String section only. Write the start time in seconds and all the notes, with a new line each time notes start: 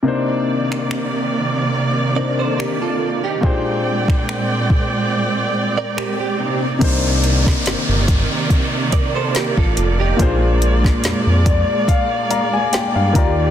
0.05 C3 D#3 A#3 D5
3.43 A#2 G#3 C4 D5 G5
6.39 C3 A#3 D#4
6.81 C3 D#3 A#3 D5
10.19 G#3
13.15 D#3 G4